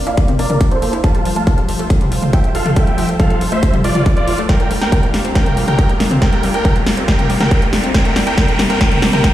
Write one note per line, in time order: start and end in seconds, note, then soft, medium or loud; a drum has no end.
0.00 1.00 A#3 medium
0.00 1.00 D4 medium
0.00 7.90 F4 medium
0.00 riser medium
0.07 0.15 A#1 medium
0.07 0.14 E4 loud
0.07 0.29 D5 medium
0.07 0.29 F5 medium
0.07 0.29 F5 loud
0.07 closed hi-hat soft
0.17 0.25 A#3 medium
0.17 kick loud
0.17 closed hi-hat medium
0.28 0.37 A#1 medium
0.28 0.33 C4 loud
0.28 closed hi-hat soft
0.28 mid tom medium
0.39 0.47 A#1 medium
0.39 0.46 A#3 loud
0.39 0.62 A#4 medium
0.39 0.62 D5 medium
0.39 open hi-hat loud
0.50 0.58 A#1 medium
0.50 0.53 D4 medium
0.50 closed hi-hat soft
0.50 mid tom medium
0.61 0.65 A#4 medium
0.61 kick loud
0.61 closed hi-hat medium
0.71 0.80 C2 medium
0.71 0.76 C4 medium
0.71 0.94 A4 medium
0.71 0.94 C5 medium
0.71 closed hi-hat soft
0.82 0.91 A#1 loud
0.82 0.89 A#3 medium
0.82 open hi-hat loud
0.93 1.01 A#1 medium
0.93 1.00 E4 loud
0.93 closed hi-hat soft
1.04 4.46 F3 medium
1.04 1.11 F3 medium
1.04 4.46 A4 medium
1.04 4.46 C5 medium
1.04 1.27 F5 medium
1.04 1.27 A5 medium
1.04 1.27 A5 loud
1.04 kick loud
1.04 closed hi-hat medium
1.15 1.23 F1 medium
1.15 1.19 G3 loud
1.15 closed hi-hat soft
1.25 1.34 F1 medium
1.25 1.32 F3 loud
1.25 open hi-hat loud
1.36 1.44 F1 medium
1.36 1.39 A3 medium
1.36 1.59 F5 medium
1.36 1.59 A5 medium
1.36 closed hi-hat soft
1.47 1.52 F4 medium
1.47 kick loud
1.47 closed hi-hat medium
1.47 mid tom medium
1.58 1.66 F1 medium
1.58 1.62 G3 medium
1.58 closed hi-hat soft
1.69 1.77 F1 loud
1.69 1.76 F3 medium
1.69 open hi-hat loud
1.79 1.88 F1 medium
1.79 1.86 A3 loud
1.79 closed hi-hat soft
1.90 1.97 F3 medium
1.90 kick loud
1.90 closed hi-hat medium
2.01 2.09 F1 medium
2.01 2.06 G3 loud
2.01 closed hi-hat soft
2.01 mid tom medium
2.12 2.20 F1 loud
2.12 2.19 F3 loud
2.12 open hi-hat loud
2.23 2.31 F1 medium
2.23 2.25 A3 medium
2.23 closed hi-hat soft
2.23 mid tom medium
2.33 2.38 F4 medium
2.33 2.48 E5 medium
2.33 2.48 G5 medium
2.33 kick loud
2.33 closed hi-hat medium
2.44 2.52 G1 medium
2.44 2.49 G3 medium
2.44 closed hi-hat soft
2.55 2.63 F1 loud
2.55 2.62 F3 medium
2.55 2.70 A4 medium
2.55 2.70 F5 medium
2.55 open hi-hat loud
2.66 2.74 F1 medium
2.66 2.73 A3 loud
2.66 closed hi-hat soft
2.66 mid tom medium
2.76 2.83 F3 medium
2.76 3.07 E5 medium
2.76 3.07 G5 loud
2.76 3.07 G5 medium
2.76 kick loud
2.76 closed hi-hat medium
2.87 2.96 F1 medium
2.87 2.92 G3 loud
2.87 closed hi-hat soft
2.98 3.06 F1 loud
2.98 3.05 F3 loud
2.98 open hi-hat loud
3.09 3.17 F1 medium
3.09 3.12 A3 medium
3.09 closed hi-hat soft
3.20 3.24 F4 medium
3.20 3.42 A4 medium
3.20 3.42 F5 loud
3.20 3.42 F5 medium
3.20 kick loud
3.20 closed hi-hat medium
3.20 mid tom medium
3.30 3.39 F1 medium
3.30 3.35 G3 medium
3.30 closed hi-hat soft
3.41 3.49 F1 loud
3.41 3.48 F3 medium
3.41 open hi-hat loud
3.52 3.60 F1 medium
3.52 3.59 A3 loud
3.52 3.75 C5 medium
3.52 3.75 E5 medium
3.52 closed hi-hat soft
3.63 3.70 F3 medium
3.63 kick loud
3.63 closed hi-hat medium
3.74 3.82 F1 medium
3.74 3.78 G3 loud
3.74 closed hi-hat soft
3.74 mid tom medium
3.84 3.93 F1 loud
3.84 3.89 F3 medium
3.84 4.07 F4 medium
3.84 4.07 D5 medium
3.84 4.07 D5 loud
3.84 open hi-hat loud
3.95 4.03 F1 medium
3.95 4.02 F3 medium
3.95 closed hi-hat soft
3.95 mid tom medium
4.06 4.09 A3 medium
4.06 kick loud
4.06 closed hi-hat medium
4.17 4.25 F1 medium
4.17 4.20 F2 loud
4.17 4.40 F4 medium
4.17 4.39 D5 medium
4.17 4.40 D5 medium
4.17 closed hi-hat soft
4.27 4.36 F1 loud
4.27 4.32 E3 medium
4.27 open hi-hat loud
4.38 4.47 F1 medium
4.38 4.45 A3 loud
4.38 closed hi-hat soft
4.49 4.56 G3 medium
4.49 7.91 G3 medium
4.49 9.34 D4 medium
4.49 4.72 A#4 medium
4.49 7.91 A#4 medium
4.49 4.72 G5 medium
4.49 kick loud
4.49 snare soft
4.49 closed hi-hat medium
4.60 4.68 G1 medium
4.60 4.65 A3 loud
4.60 closed hi-hat soft
4.71 4.79 G1 loud
4.71 4.78 G3 medium
4.71 open hi-hat loud
4.81 4.90 G1 medium
4.81 4.84 A#3 medium
4.81 5.04 A#4 medium
4.81 5.04 G5 medium
4.81 snare soft
4.81 closed hi-hat soft
4.92 4.97 G4 medium
4.92 kick loud
4.92 closed hi-hat medium
4.92 mid tom medium
5.03 5.11 G1 medium
5.03 5.08 A3 medium
5.03 closed hi-hat soft
5.14 5.22 G1 medium
5.14 5.21 G3 medium
5.14 snare soft
5.14 open hi-hat loud
5.25 5.33 G1 medium
5.25 5.32 C4 loud
5.25 closed hi-hat soft
5.35 5.42 G3 medium
5.35 5.58 A#4 medium
5.35 5.58 G5 medium
5.35 kick loud
5.35 snare medium
5.35 closed hi-hat medium
5.46 5.55 G1 medium
5.46 5.51 A3 medium
5.46 closed hi-hat soft
5.46 mid tom medium
5.57 5.65 G1 loud
5.57 5.64 G3 loud
5.57 open hi-hat loud
5.68 5.76 G1 medium
5.68 5.71 A#3 medium
5.68 5.91 A#4 medium
5.68 5.91 G5 medium
5.68 closed hi-hat soft
5.68 mid tom medium
5.79 5.83 G4 medium
5.79 kick loud
5.79 closed hi-hat medium
5.89 5.98 A1 medium
5.89 5.94 A3 medium
5.89 closed hi-hat soft
6.00 6.09 G1 loud
6.00 6.07 G3 medium
6.00 snare medium
6.00 open hi-hat loud
6.11 6.19 G1 medium
6.11 6.18 C4 loud
6.11 closed hi-hat soft
6.11 mid tom medium
6.22 6.29 G3 medium
6.22 6.45 A#4 medium
6.22 6.44 G5 medium
6.22 6.45 G5 medium
6.22 kick loud
6.22 snare medium
6.22 closed hi-hat medium
6.33 6.41 G1 medium
6.33 6.37 A3 loud
6.33 closed hi-hat soft
6.43 6.52 G1 loud
6.43 6.50 G3 medium
6.43 open hi-hat loud
6.54 6.62 G1 medium
6.54 6.57 A#3 medium
6.54 6.77 A#4 medium
6.54 6.77 G5 medium
6.54 closed hi-hat soft
6.65 6.70 G4 medium
6.65 kick loud
6.65 closed hi-hat medium
6.65 mid tom medium
6.76 6.84 G1 medium
6.76 6.80 A3 medium
6.76 closed hi-hat soft
6.87 6.95 G1 medium
6.87 6.94 G3 medium
6.87 snare medium
6.87 open hi-hat loud
6.97 7.06 G1 medium
6.97 7.04 C4 loud
6.97 closed hi-hat soft
7.08 7.15 G3 medium
7.08 7.31 A#4 medium
7.08 7.31 G5 loud
7.08 kick loud
7.08 snare medium
7.08 closed hi-hat medium
7.19 7.27 G1 medium
7.19 7.24 A3 loud
7.19 closed hi-hat soft
7.19 mid tom medium
7.30 7.38 G1 medium
7.30 7.37 G3 loud
7.30 open hi-hat loud
7.40 7.49 G1 medium
7.40 7.43 A#3 medium
7.40 7.63 A#4 medium
7.40 7.63 G5 medium
7.40 snare medium
7.40 closed hi-hat soft
7.40 mid tom medium
7.51 7.56 G4 medium
7.51 kick loud
7.51 closed hi-hat medium
7.62 7.70 A1 medium
7.62 7.67 A3 medium
7.62 closed hi-hat soft
7.73 7.81 G1 loud
7.73 7.80 G3 medium
7.73 snare medium
7.73 open hi-hat loud
7.84 7.92 G1 medium
7.84 7.91 C4 loud
7.84 closed hi-hat soft
7.94 9.34 C3 medium
7.94 8.01 G3 medium
7.94 9.34 C4 medium
7.94 9.34 E4 medium
7.94 8.17 A#4 medium
7.94 8.17 G5 loud
7.94 8.17 G5 medium
7.94 kick loud
7.94 snare medium
7.94 closed hi-hat medium
8.05 8.14 C2 medium
8.05 8.10 A3 loud
8.05 closed hi-hat soft
8.16 8.24 C2 loud
8.16 8.23 G3 loud
8.16 snare medium
8.16 open hi-hat loud
8.27 8.35 C2 medium
8.27 8.30 A#3 medium
8.27 8.36 A#4 medium
8.27 8.36 G5 medium
8.27 closed hi-hat soft
8.38 8.45 G3 medium
8.38 8.60 A#4 medium
8.38 8.60 G5 loud
8.38 kick loud
8.38 snare medium
8.38 closed hi-hat loud
8.38 mid tom medium
8.48 8.57 C2 medium
8.48 8.53 A3 loud
8.48 closed hi-hat soft
8.59 8.68 C2 loud
8.59 8.66 G3 loud
8.59 snare medium
8.59 open hi-hat loud
8.70 8.78 C2 medium
8.70 8.73 A#3 medium
8.70 8.79 A#4 medium
8.70 8.79 G5 medium
8.70 closed hi-hat soft
8.81 8.88 G3 medium
8.81 9.04 A#4 medium
8.81 9.03 G5 loud
8.81 kick loud
8.81 snare medium
8.81 closed hi-hat loud
8.91 9.00 C2 medium
8.91 8.96 A3 loud
8.91 closed hi-hat soft
8.91 mid tom medium
9.02 9.11 C2 loud
9.02 9.09 G3 loud
9.02 snare medium
9.02 open hi-hat loud
9.13 9.21 C2 medium
9.13 9.16 A#3 medium
9.13 9.22 A#4 medium
9.13 9.22 G5 medium
9.13 closed hi-hat soft
9.13 mid tom medium
9.24 9.31 G3 medium
9.24 9.34 A#4 medium
9.24 9.34 G5 loud
9.24 kick loud
9.24 snare medium
9.24 closed hi-hat loud